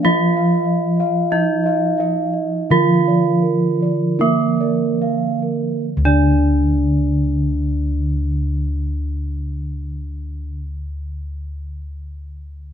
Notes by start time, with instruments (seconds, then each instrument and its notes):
Already playing: kettle gongs F3
0.03 bronze metallophone F3 F4 F5, kettle gongs F4 D#5
0.34 bronze metallophone F5, kettle gongs F5
0.65 bronze metallophone D#5
0.97 bronze metallophone D#5, kettle gongs F5
1.31 bronze metallophone D#4 D#5, kettle gongs D#4 D#5
1.64 bronze metallophone D#5, kettle gongs F5
1.98 kettle gongs D#5, bronze metallophone F5
2.34 bronze metallophone D#5
2.70 kettle gongs D3 A#4, bronze metallophone F3 F4 F5
3.06 kettle gongs D5, bronze metallophone F5
3.42 bronze metallophone A#4
3.81 bronze metallophone A#4, kettle gongs D5
4.19 bronze metallophone A#3 A#4, kettle gongs D#4 A#4
4.60 bronze metallophone A#4, kettle gongs D5
5.02 kettle gongs A#4, bronze metallophone F5
5.42 bronze metallophone A#4
5.97 kettle gongs D2
6.05 bronze metallophone D3 D4 D5, kettle gongs D5